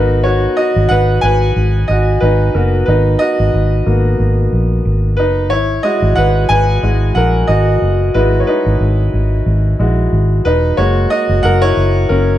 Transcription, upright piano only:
Already playing: B3 D#4 F#4 A#4 B4
0.23 F#4 C#5
0.57 F#4 D#5
0.89 B4 F#5
1.21 B4 G#5
1.88 F#4 D#5
2.20 D#4 B4
2.54 B3 F#4 A#4
2.86 D#4 B4
3.19 F#4 D#5
3.86 A#3 B3 F#4
5.17 D#4 B4
5.50 E4 C#5
5.83 G#3 E4 F#4 D#5
6.16 B4 F#5
6.49 B4 G#5
6.83 G#3 E4 F#4
7.15 A#4 F#5
7.47 F#4 D#5
8.14 G#3 E4 F#4 B4
8.40 C#5
8.47 D#4 B4
9.79 G#3 E4 F#4
10.45 D#4 B4
10.77 G#3 A#3 F#4 C#5
11.10 F#4 D#5
11.43 A#4 F#5
11.62 E4 C#5
12.09 C#4 A#4

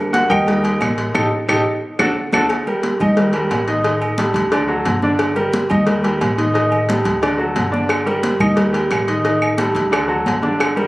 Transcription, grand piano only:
Already playing: G3 A#3 D4
0.13 F#4 F#5
0.30 G4 A#4 D#5 G5
0.47 G3 A#3 D#4
1.14 D#4 G4 A4
1.49 D#4 G4 A4
2.00 D4 F#4 A4
2.34 D4 F#4 A4
2.67 G3 G4 A#4
3.00 D#3 D#4 D#5
3.17 G3 G4 A#4
3.34 G3 G4 A#4
3.68 D#3 D#4 D#5
3.84 D#3 D#4 D#5
4.18 G3 G4 A4
4.52 D3 D4 D5
4.68 F#3 F#4 A4
5.03 D3 D4 D5
5.35 G3 G4 A#4
5.70 D#3 D#4 D#5
5.87 G3 G4 A#4
6.04 G3 G4 A#4
6.37 D#3 D#4 D#5
6.54 D#3 D#4 D#5
6.88 G3 G4 A4
7.22 D3 D4 D5
7.38 F#3 F#4 A4
7.72 D3 D4 D5
8.06 G3 G4 A#4
8.40 D#3 D#4 D#5
8.56 G3 G4 A#4
8.73 G3 G4 A#4
9.07 D#3 D#4 D#5
9.25 D#3 D#4 D#5
9.58 G3 G4 A4
9.91 D3 D4 D5
10.08 F#3 F#4 A4
10.42 D3 D4 D5
10.76 G3 G4 A#4

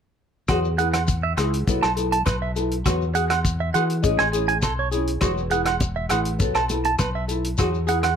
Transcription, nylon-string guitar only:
0.49 F#3 B3 E4 G#4
0.78 B3 E4 G#4
1.38 B3 E4 G#4
1.67 F#3 B3 E4 A4
1.97 B3 E4 A4
2.56 B3 E4 A4
2.86 F#3 B3 F#4, muted nylon-string guitar stroke
3.14 F#4 G#4, muted nylon-string guitar stroke
3.74 B3 F#4 G#4
4.02 G#3 C#4 E4 G#4
4.33 C#4 E4 G#4
4.91 C#4 E4 G#4
5.21 F#3 B3 E4 G#4
5.50 B3 E4 G#4
6.09 B3 E4 G#4
6.39 F#3 B3 A4, muted nylon-string guitar stroke
6.70 B3 E4 A4
7.28 E4 A4
7.58 F#3 E4 G#4, muted nylon-string guitar stroke
7.87 B3 E4 G#4

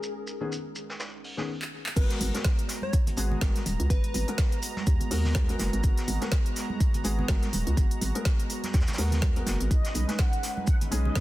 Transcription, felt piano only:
0.41 D#3 B3 C#4 G#4
1.37 D#3 B3 C#4 G#4
1.96 G#3 B3 F#4 A#4
2.34 G#3 B3 F#4 A#4
3.17 G#3 B3 F#4 G#4
3.41 G#3 B3 A#4
4.28 G#3 B3 F#4 A#4
5.11 G#3 B3 F#4 A#4
5.48 G#3 B3 F#4 A#4
6.21 G#3 B3 F#4 A#4
7.04 G#3 B3 F#4 G#4
7.28 G#3 B3 F#4 A#4
8.15 G#3 B3 F#4 A#4
8.98 G#3 B3 F#4 A#4
9.36 G#3 B3 F#4 A#4
10.08 G#3 C#4 D#4 B4
10.91 G#3 C#4 D#4 G#4
11.15 G#3 C#4 D#4 B4

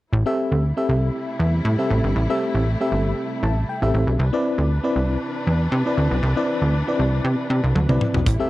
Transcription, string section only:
0.12 C3 G3 A3 E4
4.19 C3 E3 D4 B4
8.26 G3 A3 E4

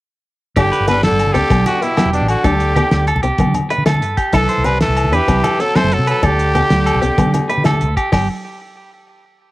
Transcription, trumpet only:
0.58 G4
0.89 B4
1.03 A4
1.33 G4
1.67 F#4
1.83 E4
2.13 D4
2.29 F#4
2.45 G4
4.33 A4
4.64 B4
4.81 A4
5.14 G4
5.61 A4
5.76 C5
5.93 A4
6.10 A4
6.25 G4

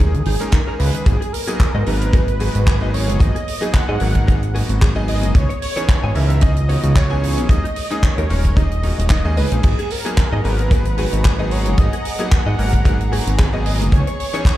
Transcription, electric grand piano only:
0.00 G#3 A#3 C#4 D#4 G#4
0.40 G#3 A#3 C#4 D#4 A#4
0.67 G#3 A#3 C#4 D#4 G#4
1.06 F#3 A#3 B3 D#4 G#4
1.47 F#3 A#3 B3 D#4 G#4
1.86 F#3 A#3 B3 D#4 A#4
2.13 F#3 A#3 B3 D#4 G#4
2.39 F#3 G#3 B3 D#4 F#4
2.80 F#3 A#3 B3 D#4 G#4
3.19 F#3 A#3 B3 D#4 G#4
3.61 F#3 A#3 B3 D#4 G#4
4.00 F#3 A#3 B3 D#4 A#4
4.27 F#3 A#3 B3 D#4 G#4
4.54 F#3 A#3 B3 D#4 F#4
4.95 F#3 A#3 B3 D#4 G#4
5.34 E3 B3 C#4 D#4 G#4
5.76 E3 B3 C#4 D#4 G#4
6.15 E3 B3 C#4 D#4 A#4
6.41 E3 B3 C#4 D#4 G#4
6.68 E3 B3 C#4 D#4 F#4
7.10 E3 B3 C#4 D#4 G#4
7.49 G#3 A#3 C#4 D#4 G#4
7.90 G#3 A#3 C#4 D#4 G#4
8.29 G#3 A#3 C#4 D#4 A#4
8.56 G#3 A#3 C#4 D#4 G#4
8.83 G#3 A#3 C#4 D#4 F#4
9.25 G#3 A#3 C#4 D#4 G#4
9.63 F#3 A#3 B3 G#4
10.05 F#3 A#3 B3 D#4 G#4
10.44 F#3 A#3 B3 D#4 A#4
10.71 F#3 A#3 B3 D#4 G#4
10.98 F#3 G#3 B3 D#4 F#4
11.39 F#3 A#3 B3 D#4 G#4
11.78 F#3 A#3 B3 D#4 G#4
12.19 F#3 A#3 B3 D#4 G#4
12.58 F#3 A#3 B3 D#4 A#4
12.85 F#3 A#3 B3 D#4 G#4
13.12 F#3 A#3 B3 D#4 F#4
13.52 F#3 A#3 B3 D#4 G#4
13.92 E3 B3 C#4 D#4 G#4
14.33 E3 B3 C#4 D#4 G#4

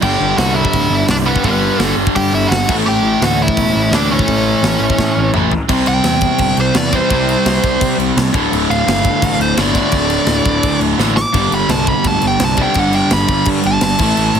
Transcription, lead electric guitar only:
0.03 G4 G5
0.38 F#4 F#5
0.55 E4 E5
1.11 D4 D5
1.26 B3 B4
1.45 B3 B4
2.16 G4 G5
2.34 E4 E5
2.48 F#4 F#5
2.86 G4 G5
3.22 F#4 F#5
3.42 E4 E5
3.94 D4 D5
4.11 C#4 C#5
5.88 G5
6.61 C5
6.77 D5
6.95 C5
8.70 F5
9.42 C5
9.60 D5
9.77 D5
11.17 D6
11.55 B5
11.70 A5
11.88 B5
12.07 A5
12.27 G5
12.44 A5
12.62 G5
12.79 F#5
12.95 G5
13.13 B5
13.67 A5
13.84 A5

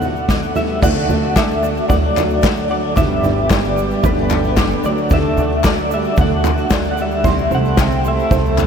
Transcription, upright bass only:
0.83 D2
1.09 D2
1.90 D2
2.97 G1
3.24 G1
4.04 G1
4.84 D2
5.37 D2
6.18 D2
7.24 C2
7.51 C2
8.31 C2

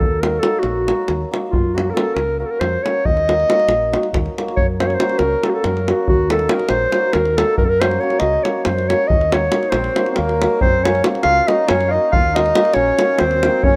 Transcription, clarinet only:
Already playing: A4
0.21 A#4
0.39 A4
0.59 F#4
1.51 F4
1.74 F#4
1.90 A4 A#4
2.14 A#4
2.39 A#4
2.46 A4
2.51 A#4
2.60 C5
2.83 C#5
3.05 D#5
4.57 C#5
4.80 C5
4.87 C#5
4.94 C5
5.19 A#4
5.45 A4
5.50 F#4
5.54 A4
5.65 A#4
5.91 F#4
6.09 F#4
6.31 A4
6.53 A#4
6.70 C5
7.13 A#4
7.37 A4
7.58 A#4
7.65 A4 A#4
7.81 C5
8.00 C#5
8.19 D#5
8.43 C#5
8.64 C5
8.88 C#5
9.07 D#5
9.33 C#5
9.70 C5
10.10 C5
10.16 A#4
10.61 C5
10.84 C#5
11.23 F5
11.48 D#5
11.68 C#5
11.89 D#5 F5
12.12 F5
12.35 D#5
12.74 C#5
13.20 C5
13.64 C#5

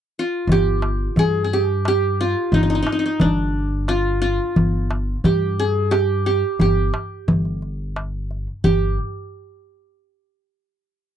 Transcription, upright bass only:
0.47 G1
1.16 G2
2.52 G1
3.21 G1
4.56 G1
5.24 G2
6.60 G1
7.28 G1
8.64 G1

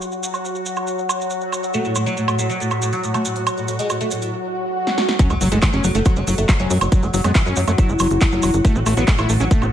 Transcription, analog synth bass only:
5.30 F#1
5.41 F#1
5.52 F#1
5.73 F#1
5.84 F#1
5.95 F#1
6.16 F#1
6.27 F#1
6.38 F#1
6.60 F#1
6.70 F#2
6.81 F#1
7.03 F#1
7.14 F#1
7.24 F#2
7.46 F#2
7.57 F#2
7.68 F#2
7.89 F#1
8.00 F#1
8.11 F#1
8.32 F#1
8.43 E1
8.54 F#1
8.75 A1
8.86 A1
8.97 A1
9.19 A1
9.29 A1
9.40 A1
9.62 A1

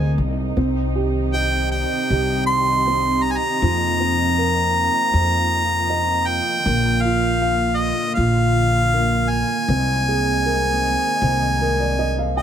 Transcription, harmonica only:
Already playing: G#5
1.33 G5
1.72 G5
2.47 C6
3.23 A#5
3.31 G#5
3.37 A#5
6.27 G5
7.02 F5
7.77 D#5
8.15 F5
9.30 G#5
12.37 D#5

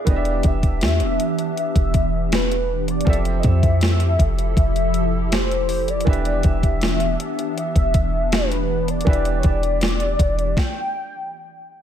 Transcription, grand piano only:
0.05 E3 B3 D4 G4
0.10 D#5
0.16 E5
3.05 F3 C4 G4 A4
3.10 E5
6.05 E3 D4 G4 B4
6.10 E5
9.05 E3 D4 G4 B4
9.10 E5

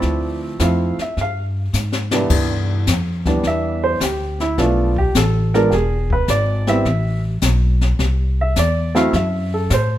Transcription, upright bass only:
0.03 D2
0.60 F2
0.98 muted upright bass stroke
1.17 G2
1.73 G#2
2.30 G2
2.87 F2
3.43 E2
4.00 D2
4.58 B1
5.15 A1
5.72 E1
6.28 G#1
6.85 A1
7.42 B1
7.99 C2
8.56 E2
9.13 F#2
9.70 A2

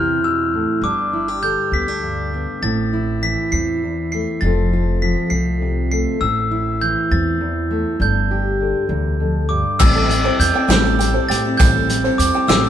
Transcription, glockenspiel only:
Already playing: F6
0.24 E6
0.84 D6
1.43 G6
1.74 B6
2.63 A6
3.23 B6
3.52 C7
4.12 C7
4.41 A6
5.02 B6
5.30 C7
5.92 C7
6.21 E6
6.81 G6
7.12 A6
8.02 G6
9.49 D6
9.79 E6
10.40 G6
10.70 G6
11.29 A6
11.57 G6
12.18 D6
12.48 E6

